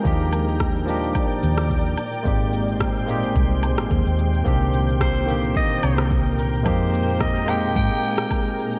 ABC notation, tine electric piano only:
X:1
M:4/4
L:1/8
Q:"Swing 16ths" 1/4=109
K:Cm
V:1 name="Tine electric piano"
[F,B,DEG]3 [F,B,DEG]4 z | [A,B,CEG]3 [A,B,CEG]4- [A,B,CEG] | [E,B,CDG]3 [D,E,B,CG]4- [D,E,B,CG] | [A,B,CEG]3 [A,B,CEG]4- [A,B,CEG] |]